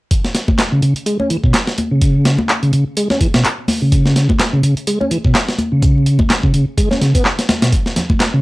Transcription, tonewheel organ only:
0, 0, Header, 1, 2, 480
1, 0, Start_track
1, 0, Key_signature, 4, "minor"
1, 0, Tempo, 476190
1, 111, Time_signature, 4, 2, 24, 8
1, 8483, End_track
2, 0, Start_track
2, 0, Title_t, "Tonewheel organ"
2, 0, Program_c, 0, 16
2, 726, Note_on_c, 0, 49, 95
2, 819, Note_off_c, 0, 49, 0
2, 831, Note_on_c, 0, 49, 71
2, 946, Note_off_c, 0, 49, 0
2, 1069, Note_on_c, 0, 56, 75
2, 1185, Note_off_c, 0, 56, 0
2, 1206, Note_on_c, 0, 61, 70
2, 1305, Note_off_c, 0, 61, 0
2, 1311, Note_on_c, 0, 52, 75
2, 1380, Note_off_c, 0, 52, 0
2, 1447, Note_on_c, 0, 47, 71
2, 1546, Note_off_c, 0, 47, 0
2, 1927, Note_on_c, 0, 49, 72
2, 2393, Note_off_c, 0, 49, 0
2, 2646, Note_on_c, 0, 49, 96
2, 2740, Note_off_c, 0, 49, 0
2, 2752, Note_on_c, 0, 49, 71
2, 2866, Note_off_c, 0, 49, 0
2, 2992, Note_on_c, 0, 56, 77
2, 3106, Note_off_c, 0, 56, 0
2, 3129, Note_on_c, 0, 61, 70
2, 3227, Note_off_c, 0, 61, 0
2, 3232, Note_on_c, 0, 52, 75
2, 3300, Note_off_c, 0, 52, 0
2, 3368, Note_on_c, 0, 47, 72
2, 3466, Note_off_c, 0, 47, 0
2, 3849, Note_on_c, 0, 49, 71
2, 4314, Note_off_c, 0, 49, 0
2, 4567, Note_on_c, 0, 49, 93
2, 4657, Note_off_c, 0, 49, 0
2, 4669, Note_on_c, 0, 49, 75
2, 4785, Note_off_c, 0, 49, 0
2, 4911, Note_on_c, 0, 56, 74
2, 5026, Note_off_c, 0, 56, 0
2, 5045, Note_on_c, 0, 61, 73
2, 5145, Note_off_c, 0, 61, 0
2, 5150, Note_on_c, 0, 52, 72
2, 5219, Note_off_c, 0, 52, 0
2, 5285, Note_on_c, 0, 47, 73
2, 5385, Note_off_c, 0, 47, 0
2, 5764, Note_on_c, 0, 49, 73
2, 6232, Note_off_c, 0, 49, 0
2, 6484, Note_on_c, 0, 49, 88
2, 6576, Note_off_c, 0, 49, 0
2, 6588, Note_on_c, 0, 49, 71
2, 6704, Note_off_c, 0, 49, 0
2, 6828, Note_on_c, 0, 56, 76
2, 6944, Note_off_c, 0, 56, 0
2, 6962, Note_on_c, 0, 61, 69
2, 7063, Note_off_c, 0, 61, 0
2, 7067, Note_on_c, 0, 49, 73
2, 7191, Note_off_c, 0, 49, 0
2, 7202, Note_on_c, 0, 59, 74
2, 7293, Note_off_c, 0, 59, 0
2, 7683, Note_on_c, 0, 47, 72
2, 7784, Note_off_c, 0, 47, 0
2, 8404, Note_on_c, 0, 49, 94
2, 8483, Note_off_c, 0, 49, 0
2, 8483, End_track
0, 0, End_of_file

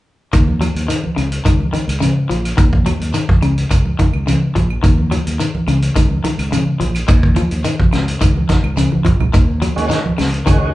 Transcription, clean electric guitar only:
0, 0, Header, 1, 3, 480
1, 0, Start_track
1, 0, Key_signature, -6, "minor"
1, 0, Tempo, 563380
1, 281, Time_signature, 4, 2, 24, 8
1, 9152, End_track
2, 0, Start_track
2, 0, Title_t, "Clean electric guitar"
2, 0, Program_c, 0, 27
2, 282, Note_on_c, 0, 51, 65
2, 462, Note_off_c, 0, 51, 0
2, 518, Note_on_c, 0, 54, 64
2, 699, Note_off_c, 0, 54, 0
2, 753, Note_on_c, 0, 51, 62
2, 936, Note_off_c, 0, 51, 0
2, 992, Note_on_c, 0, 49, 58
2, 1175, Note_off_c, 0, 49, 0
2, 1237, Note_on_c, 0, 51, 69
2, 1418, Note_off_c, 0, 51, 0
2, 1473, Note_on_c, 0, 51, 61
2, 1656, Note_off_c, 0, 51, 0
2, 1707, Note_on_c, 0, 49, 62
2, 1892, Note_off_c, 0, 49, 0
2, 1955, Note_on_c, 0, 53, 63
2, 2137, Note_off_c, 0, 53, 0
2, 2191, Note_on_c, 0, 51, 73
2, 2375, Note_off_c, 0, 51, 0
2, 2436, Note_on_c, 0, 54, 59
2, 2618, Note_off_c, 0, 54, 0
2, 2676, Note_on_c, 0, 51, 65
2, 2857, Note_off_c, 0, 51, 0
2, 2918, Note_on_c, 0, 49, 58
2, 3099, Note_off_c, 0, 49, 0
2, 3399, Note_on_c, 0, 51, 61
2, 3579, Note_off_c, 0, 51, 0
2, 3639, Note_on_c, 0, 49, 58
2, 3819, Note_off_c, 0, 49, 0
2, 3879, Note_on_c, 0, 53, 60
2, 4059, Note_off_c, 0, 53, 0
2, 4113, Note_on_c, 0, 51, 74
2, 4295, Note_off_c, 0, 51, 0
2, 4357, Note_on_c, 0, 54, 66
2, 4537, Note_off_c, 0, 54, 0
2, 4596, Note_on_c, 0, 51, 64
2, 4777, Note_off_c, 0, 51, 0
2, 4837, Note_on_c, 0, 49, 61
2, 5018, Note_off_c, 0, 49, 0
2, 5074, Note_on_c, 0, 51, 69
2, 5256, Note_off_c, 0, 51, 0
2, 5317, Note_on_c, 0, 51, 57
2, 5498, Note_off_c, 0, 51, 0
2, 5556, Note_on_c, 0, 49, 65
2, 5737, Note_off_c, 0, 49, 0
2, 5792, Note_on_c, 0, 53, 62
2, 5974, Note_off_c, 0, 53, 0
2, 6033, Note_on_c, 0, 51, 78
2, 6215, Note_off_c, 0, 51, 0
2, 6274, Note_on_c, 0, 53, 69
2, 6455, Note_off_c, 0, 53, 0
2, 6514, Note_on_c, 0, 51, 63
2, 6695, Note_off_c, 0, 51, 0
2, 6755, Note_on_c, 0, 49, 66
2, 6936, Note_off_c, 0, 49, 0
2, 6994, Note_on_c, 0, 51, 70
2, 7175, Note_off_c, 0, 51, 0
2, 7235, Note_on_c, 0, 51, 58
2, 7416, Note_off_c, 0, 51, 0
2, 7475, Note_on_c, 0, 49, 61
2, 7656, Note_off_c, 0, 49, 0
2, 7708, Note_on_c, 0, 53, 65
2, 7891, Note_off_c, 0, 53, 0
2, 7953, Note_on_c, 0, 51, 75
2, 8135, Note_off_c, 0, 51, 0
2, 8194, Note_on_c, 0, 54, 70
2, 8375, Note_off_c, 0, 54, 0
2, 8434, Note_on_c, 0, 51, 64
2, 8615, Note_off_c, 0, 51, 0
2, 8675, Note_on_c, 0, 49, 69
2, 8856, Note_off_c, 0, 49, 0
2, 8911, Note_on_c, 0, 51, 71
2, 9094, Note_off_c, 0, 51, 0
2, 9152, End_track
3, 0, Start_track
3, 0, Title_t, "Muted clean electric guitar strokes"
3, 3158, Note_on_c, 9, 29, 67
3, 3243, Note_off_c, 9, 29, 0
3, 9152, End_track
0, 0, End_of_file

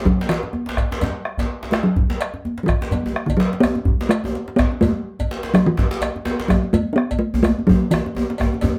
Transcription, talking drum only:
0, 0, Header, 1, 2, 480
1, 0, Start_track
1, 0, Tempo, 476190
1, 65, Time_signature, 4, 2, 24, 8
1, 8858, End_track
2, 0, Start_track
2, 0, Title_t, "Talking drum"
2, 0, Program_c, 0, 116
2, 54, Note_on_c, 0, 54, 88
2, 292, Note_on_c, 0, 52, 87
2, 307, Note_off_c, 0, 54, 0
2, 1734, Note_on_c, 0, 57, 85
2, 1749, Note_off_c, 0, 52, 0
2, 1848, Note_on_c, 0, 54, 77
2, 1863, Note_off_c, 0, 57, 0
2, 2653, Note_off_c, 0, 54, 0
2, 2653, Note_on_c, 0, 54, 57
2, 2683, Note_on_c, 0, 52, 87
2, 2699, Note_off_c, 0, 54, 0
2, 3289, Note_on_c, 0, 50, 73
2, 3305, Note_off_c, 0, 52, 0
2, 3394, Note_on_c, 0, 54, 83
2, 3409, Note_off_c, 0, 50, 0
2, 3633, Note_on_c, 0, 59, 94
2, 3648, Note_off_c, 0, 54, 0
2, 4124, Note_on_c, 0, 57, 83
2, 4139, Note_off_c, 0, 59, 0
2, 4599, Note_on_c, 0, 59, 84
2, 4614, Note_off_c, 0, 57, 0
2, 4841, Note_off_c, 0, 59, 0
2, 4847, Note_on_c, 0, 57, 84
2, 5581, Note_on_c, 0, 54, 78
2, 5596, Note_off_c, 0, 57, 0
2, 5704, Note_off_c, 0, 54, 0
2, 5710, Note_on_c, 0, 52, 84
2, 6535, Note_on_c, 0, 54, 78
2, 6550, Note_off_c, 0, 52, 0
2, 6784, Note_on_c, 0, 57, 76
2, 6799, Note_off_c, 0, 54, 0
2, 6973, Note_off_c, 0, 57, 0
2, 6984, Note_on_c, 0, 62, 60
2, 7014, Note_on_c, 0, 59, 83
2, 7029, Note_off_c, 0, 62, 0
2, 7245, Note_on_c, 0, 57, 83
2, 7260, Note_off_c, 0, 59, 0
2, 7481, Note_off_c, 0, 57, 0
2, 7487, Note_on_c, 0, 57, 86
2, 7729, Note_on_c, 0, 54, 82
2, 7745, Note_off_c, 0, 57, 0
2, 7971, Note_on_c, 0, 52, 73
2, 7986, Note_off_c, 0, 54, 0
2, 8858, Note_off_c, 0, 52, 0
2, 8858, End_track
0, 0, End_of_file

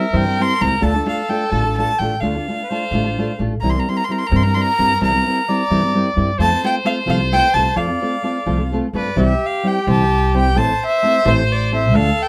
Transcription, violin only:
0, 0, Header, 1, 2, 480
1, 0, Start_track
1, 0, Key_signature, -1, "major"
1, 0, Tempo, 462606
1, 857, Time_signature, 6, 3, 24, 8
1, 9511, Key_signature, 0, "major"
1, 12745, End_track
2, 0, Start_track
2, 0, Title_t, "Violin"
2, 0, Program_c, 0, 40
2, 0, Note_on_c, 0, 76, 70
2, 174, Note_on_c, 0, 79, 88
2, 189, Note_off_c, 0, 76, 0
2, 434, Note_on_c, 0, 84, 108
2, 450, Note_off_c, 0, 79, 0
2, 638, Note_on_c, 0, 82, 93
2, 653, Note_off_c, 0, 84, 0
2, 857, Note_on_c, 0, 81, 92
2, 873, Note_off_c, 0, 82, 0
2, 1118, Note_off_c, 0, 81, 0
2, 1129, Note_on_c, 0, 77, 77
2, 1345, Note_on_c, 0, 79, 74
2, 1360, Note_off_c, 0, 77, 0
2, 1559, Note_on_c, 0, 81, 82
2, 1574, Note_off_c, 0, 79, 0
2, 1828, Note_off_c, 0, 81, 0
2, 1841, Note_on_c, 0, 81, 99
2, 2060, Note_on_c, 0, 79, 86
2, 2075, Note_off_c, 0, 81, 0
2, 2290, Note_on_c, 0, 77, 78
2, 2306, Note_off_c, 0, 79, 0
2, 3514, Note_off_c, 0, 77, 0
2, 3740, Note_on_c, 0, 82, 83
2, 3835, Note_on_c, 0, 84, 80
2, 3850, Note_off_c, 0, 82, 0
2, 3937, Note_on_c, 0, 82, 71
2, 3952, Note_off_c, 0, 84, 0
2, 4034, Note_on_c, 0, 84, 85
2, 4050, Note_off_c, 0, 82, 0
2, 4116, Note_on_c, 0, 82, 101
2, 4132, Note_off_c, 0, 84, 0
2, 4194, Note_on_c, 0, 84, 72
2, 4210, Note_off_c, 0, 82, 0
2, 4274, Note_on_c, 0, 82, 74
2, 4290, Note_off_c, 0, 84, 0
2, 4343, Note_on_c, 0, 84, 93
2, 4359, Note_off_c, 0, 82, 0
2, 4428, Note_on_c, 0, 82, 86
2, 4444, Note_off_c, 0, 84, 0
2, 4527, Note_on_c, 0, 84, 87
2, 4543, Note_off_c, 0, 82, 0
2, 4600, Note_on_c, 0, 82, 97
2, 4616, Note_off_c, 0, 84, 0
2, 4713, Note_on_c, 0, 84, 91
2, 4729, Note_off_c, 0, 82, 0
2, 4789, Note_on_c, 0, 82, 115
2, 4805, Note_off_c, 0, 84, 0
2, 5205, Note_off_c, 0, 82, 0
2, 5219, Note_on_c, 0, 82, 102
2, 6138, Note_off_c, 0, 82, 0
2, 6652, Note_on_c, 0, 81, 105
2, 6879, Note_off_c, 0, 81, 0
2, 6910, Note_on_c, 0, 79, 99
2, 7006, Note_off_c, 0, 79, 0
2, 7116, Note_on_c, 0, 77, 83
2, 7217, Note_off_c, 0, 77, 0
2, 7363, Note_on_c, 0, 77, 80
2, 7475, Note_off_c, 0, 77, 0
2, 7606, Note_on_c, 0, 79, 114
2, 7822, Note_on_c, 0, 81, 96
2, 7838, Note_off_c, 0, 79, 0
2, 8060, Note_on_c, 0, 77, 77
2, 8076, Note_off_c, 0, 81, 0
2, 9047, Note_off_c, 0, 77, 0
2, 9296, Note_on_c, 0, 74, 72
2, 9542, Note_on_c, 0, 76, 86
2, 9557, Note_off_c, 0, 74, 0
2, 9817, Note_on_c, 0, 77, 82
2, 9832, Note_off_c, 0, 76, 0
2, 10032, Note_on_c, 0, 79, 85
2, 10048, Note_off_c, 0, 77, 0
2, 10252, Note_off_c, 0, 79, 0
2, 10280, Note_on_c, 0, 81, 83
2, 10721, Note_off_c, 0, 81, 0
2, 10762, Note_on_c, 0, 79, 91
2, 10974, Note_on_c, 0, 81, 97
2, 10989, Note_off_c, 0, 79, 0
2, 11231, Note_off_c, 0, 81, 0
2, 11264, Note_on_c, 0, 76, 110
2, 11698, Note_on_c, 0, 72, 90
2, 11714, Note_off_c, 0, 76, 0
2, 11957, Note_on_c, 0, 74, 86
2, 11973, Note_off_c, 0, 72, 0
2, 12175, Note_off_c, 0, 74, 0
2, 12188, Note_on_c, 0, 76, 81
2, 12406, Note_on_c, 0, 77, 97
2, 12421, Note_off_c, 0, 76, 0
2, 12681, Note_on_c, 0, 79, 93
2, 12696, Note_off_c, 0, 77, 0
2, 12745, Note_off_c, 0, 79, 0
2, 12745, End_track
0, 0, End_of_file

